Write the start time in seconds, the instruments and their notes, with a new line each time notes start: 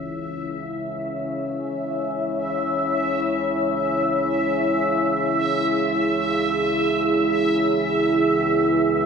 Already playing: synth drone C#2 C#3, analog synth pad C#4 E4 G#4, synth texture E5
0.66 analog synth pad C#5
8.21 analog synth pad B4